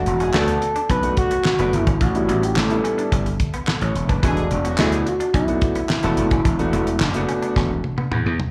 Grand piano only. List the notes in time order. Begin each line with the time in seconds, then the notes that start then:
0.20 D4 F#4
0.33 A3 B3 D4 F#4
0.89 D4 F#4
1.03 A3 B3 D4 F#4
1.59 A3 B3 D4 F#4
2.15 G3 B3 D4 E4
2.70 G3 B3 D4 E4
3.68 A4
3.81 C#5
4.09 B4
4.23 A3 B3 D4 F#4
4.64 D4 F#4
4.78 A3 B3 D4 F#4
5.34 D4 F#4
5.48 A3 B3 D4 F#4
6.03 A3 B3 D4 F#4
6.59 A3 B3 D4 F#4
7.15 A3 B3 D4 F#4